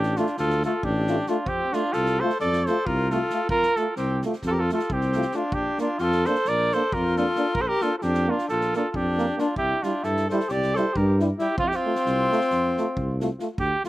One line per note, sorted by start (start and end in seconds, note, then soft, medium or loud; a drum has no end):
0.00 0.18 A1 loud
0.00 0.16 D4 medium
0.00 0.19 G4 loud
0.00 snare soft
0.16 0.26 A3 medium
0.16 0.38 D4 medium
0.16 0.38 F4 medium
0.16 0.26 F4 medium
0.16 snare soft
0.26 snare soft
0.37 0.64 D2 medium
0.37 0.63 F4 medium
0.37 0.63 A4 loud
0.37 snare soft
0.50 snare soft
0.63 0.73 A3 medium
0.63 0.73 F4 medium
0.63 0.86 F4 medium
0.63 0.86 A4 medium
0.63 snare soft
0.83 1.19 A1 loud
0.83 1.28 D4 medium
0.83 1.30 G4 medium
0.83 kick medium
1.07 1.17 A3 medium
1.07 1.16 F4 medium
1.07 snare soft
1.27 1.37 A3 medium
1.27 1.47 D4 medium
1.27 1.36 F4 medium
1.27 1.50 F4 medium
1.27 snare soft
1.46 1.63 F2 medium
1.46 1.74 C4 medium
1.46 1.75 G4 loud
1.46 kick medium
1.73 1.82 A3 medium
1.73 1.94 D4 medium
1.73 1.95 F4 medium
1.73 1.82 F4 medium
1.73 snare soft
1.92 2.21 C2 medium
1.92 2.21 F4 medium
1.92 2.22 A4 loud
1.92 snare soft
2.06 snare soft
2.20 2.31 A3 medium
2.20 2.30 F4 medium
2.20 2.39 A4 medium
2.20 2.40 C5 medium
2.30 snare soft
2.39 2.67 F2 medium
2.39 2.65 A4 medium
2.39 2.69 D5 loud
2.39 snare soft
2.53 snare soft
2.65 2.76 A3 medium
2.65 2.77 F4 medium
2.65 2.87 A4 medium
2.65 2.89 C5 medium
2.65 snare soft
2.86 3.22 C2 loud
2.86 3.10 F4 medium
2.86 3.13 A#4 medium
2.86 kick medium
3.10 3.19 A3 medium
3.10 3.49 F4 medium
3.10 3.21 F4 medium
3.10 3.50 A4 medium
3.10 snare soft
3.30 3.40 A3 soft
3.30 3.41 F4 medium
3.30 snare soft
3.49 3.65 F2 medium
3.49 3.76 F4 medium
3.49 3.78 A#4 loud
3.49 kick loud
3.63 snare soft
3.76 3.86 A3 soft
3.76 3.96 F4 medium
3.76 3.87 F4 soft
3.76 3.97 A4 medium
3.76 snare soft
3.96 4.23 C2 medium
3.96 4.22 C4 medium
3.96 4.22 G4 medium
3.96 snare soft
4.22 4.33 A3 medium
4.22 4.33 F4 soft
4.22 snare soft
4.33 snare soft
4.42 4.70 F2 medium
4.42 kick medium
4.42 snare soft
4.47 4.53 F4 medium
4.47 4.62 G4 medium
4.47 4.52 A4 loud
4.47 4.60 A#4 medium
4.59 4.71 F4 medium
4.59 4.71 A4 medium
4.69 4.79 A3 medium
4.69 4.94 F4 medium
4.69 4.80 F4 soft
4.69 snare soft
4.74 4.94 A4 medium
4.79 snare soft
4.90 5.24 C2 medium
4.90 5.36 C4 medium
4.90 5.38 G4 medium
4.90 kick medium
5.01 snare soft
5.12 5.22 A3 soft
5.12 snare soft
5.17 5.24 F4 medium
5.22 snare soft
5.32 5.42 A3 soft
5.32 5.54 D4 medium
5.32 5.43 F4 soft
5.32 snare soft
5.37 5.55 F4 medium
5.52 5.68 A#1 medium
5.52 5.80 D4 medium
5.52 5.80 G4 loud
5.52 kick medium
5.78 5.87 A#3 medium
5.78 5.88 D4 medium
5.78 6.01 D4 medium
5.78 6.04 F4 medium
5.78 snare soft
5.98 6.25 F2 loud
5.98 6.28 F4 medium
5.98 snare soft
6.03 6.28 A4 loud
6.12 snare soft
6.25 6.35 A#3 medium
6.25 6.34 D4 medium
6.25 6.49 A4 medium
6.25 6.50 C5 loud
6.25 snare soft
6.35 snare soft
6.45 6.73 A#1 medium
6.45 6.75 A#4 medium
6.45 6.75 D5 loud
6.45 snare soft
6.72 6.82 A#3 medium
6.72 6.82 D4 soft
6.72 6.96 A4 medium
6.72 6.95 C5 medium
6.72 snare soft
6.92 7.29 F2 medium
6.92 7.17 F4 medium
6.92 7.19 A#4 medium
6.92 kick medium
7.16 7.25 A#3 medium
7.16 7.25 D4 medium
7.16 7.56 F4 medium
7.16 7.56 A4 medium
7.16 snare soft
7.36 7.44 A#3 soft
7.36 7.45 D4 medium
7.36 snare soft
7.55 7.71 A#1 medium
7.55 7.63 F4 medium
7.55 7.63 A#4 loud
7.55 kick medium
7.61 7.70 A4 medium
7.61 7.69 C5 medium
7.68 7.84 G4 loud
7.68 7.84 A#4 loud
7.81 7.90 A#3 medium
7.81 7.91 D4 medium
7.81 7.97 F4 medium
7.81 7.97 A4 medium
7.81 snare soft
7.98 8.04 F4 soft
7.98 8.04 A4 medium
7.98 snare soft
8.02 8.29 F2 loud
8.02 8.29 D4 medium
8.02 8.32 G4 loud
8.14 snare soft
8.27 8.36 A#3 medium
8.27 8.49 D4 medium
8.27 8.38 D4 medium
8.27 8.48 F4 loud
8.38 snare soft
8.49 8.75 A#1 medium
8.49 8.74 F4 medium
8.49 8.73 A4 loud
8.49 snare soft
8.61 snare soft
8.73 8.83 A#3 medium
8.73 8.84 D4 medium
8.73 8.90 F4 medium
8.73 8.92 A4 medium
8.73 snare soft
8.90 8.97 F4 soft
8.90 8.98 A4 medium
8.94 9.29 F2 medium
8.94 9.38 D4 medium
8.94 9.42 G4 medium
8.94 kick medium
9.18 9.26 A#3 medium
9.18 9.26 D4 medium
9.18 snare soft
9.37 9.45 A#3 soft
9.37 9.56 D4 medium
9.37 9.47 D4 medium
9.37 9.57 F4 medium
9.37 snare soft
9.56 9.72 C2 medium
9.56 9.83 E4 medium
9.56 9.85 G4 loud
9.56 kick medium
9.82 9.92 G3 medium
9.82 10.05 D4 medium
9.82 9.93 E4 soft
9.82 10.06 F4 medium
9.82 snare soft
10.03 10.30 G2 medium
10.03 10.28 E4 medium
10.03 10.30 A4 loud
10.03 snare soft
10.17 snare soft
10.28 10.39 G3 medium
10.28 10.40 E4 medium
10.28 10.50 A4 medium
10.28 10.53 C5 medium
10.28 snare soft
10.40 snare soft
10.49 10.76 C2 medium
10.49 10.77 G4 medium
10.49 10.78 D5 loud
10.49 snare soft
10.62 snare soft
10.75 10.85 G3 medium
10.75 10.85 E4 medium
10.75 10.95 A4 medium
10.75 10.98 C5 medium
10.75 snare soft
10.93 11.31 G2 loud
10.93 11.18 G4 medium
10.93 11.20 A#4 medium
10.93 kick medium
11.20 11.29 G3 medium
11.20 11.28 E4 medium
11.20 snare soft
11.37 11.47 G3 soft
11.37 11.56 E4 medium
11.37 11.47 E4 medium
11.37 11.58 G4 medium
11.37 snare soft
11.57 11.73 F2 medium
11.57 11.66 C4 medium
11.57 11.70 F4 loud
11.57 kick loud
11.65 11.75 E4 medium
11.65 11.77 G4 loud
11.71 13.20 C4 loud
11.71 snare soft
11.76 13.21 F4 loud
11.86 11.93 A3 medium
11.86 11.94 F4 soft
11.95 snare soft
12.06 12.31 C2 loud
12.06 snare soft
12.31 12.39 A3 medium
12.31 12.40 F4 medium
12.31 snare soft
12.41 snare soft
12.50 12.77 F2 medium
12.50 snare soft
12.77 12.86 A3 medium
12.77 12.87 F4 soft
12.77 snare soft
12.97 13.31 C2 medium
12.97 kick medium
13.21 13.29 A3 medium
13.21 13.29 F4 medium
13.21 snare soft
13.39 13.48 A3 soft
13.39 13.47 F4 soft
13.39 snare soft
13.58 13.73 D2 medium
13.58 13.84 G4 loud
13.58 kick medium
13.84 13.89 F4 soft
13.84 13.89 F4 loud
13.84 snare soft